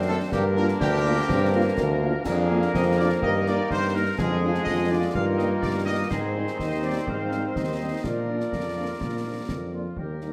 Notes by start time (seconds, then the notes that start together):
Already playing: F#2 D3 C4 D4 C5
0.08 A3 C4 D4 A4
0.32 G2 D3 A#3 D4 G4 A#4, concert bass drum, snare
0.56 A#3 D4 F4 A#4
0.68 snare
0.80 D2 D4 G4, concert bass drum, snare
1.06 A#3 D4 F4
1.29 G2 C4, concert bass drum, snare
1.54 A#3 D4 F4
1.77 D2 A#3, concert bass drum, snare
2.03 A#3 D4 F4
2.24 F2 D3 A#3 D4 G#4 A#4, concert bass drum, snare, crash
2.50 A#3 D4 F4
2.62 snare
2.73 F2 C4 D#5, concert bass drum, snare
2.98 A#3 D4 F4 D5
3.21 G2 D#3 A#3 D#4 D#5, concert bass drum
3.46 A#3 D#4 D5, snare
3.70 G2 C5, concert bass drum, snare
3.95 A#3 D#4 A#4
4.17 F2 D3 G#3 D4 F4 G#4, concert bass drum, snare
4.42 G#3 D4 F4
4.55 snare
4.64 F2 D#5, concert bass drum, snare
4.90 G#3 D4 F4 D5
5.13 G2 D#3 A#3 D#4 A#4 F5, concert bass drum
5.37 G3 A#3 D#4 D#5, snare
5.62 G2 D5, concert bass drum, snare
5.85 G3 A#3 D#4 D#5
6.09 G#2 D#3 C4 D#4 G#4 C5, concert bass drum, snare, crash
6.34 G3 C4 D#4
6.47 snare
6.58 D#2 D#5, concert bass drum, snare
6.83 G3 C4 D#4 D5
7.07 G#2 C4 F5, concert bass drum
7.32 G3 C4 D#4, snare
7.55 D#2 D#5, concert bass drum, snare
7.80 G3 C4 D#4
8.03 A#2 F3 A#3 D4 F4 A#4 D5, concert bass drum, snare
8.28 F3 A#3 D4
8.41 snare
8.53 F2, concert bass drum, snare
8.76 F3 A#3 D4
9.01 A#2, concert bass drum, snare
9.25 F3 A#3 D4
9.49 F2, concert bass drum, snare
9.73 F3 A#3 D4 F4
9.97 D#2 A#3 D#4 G4 A#4, concert bass drum
10.21 G3 A#3 D#4, snare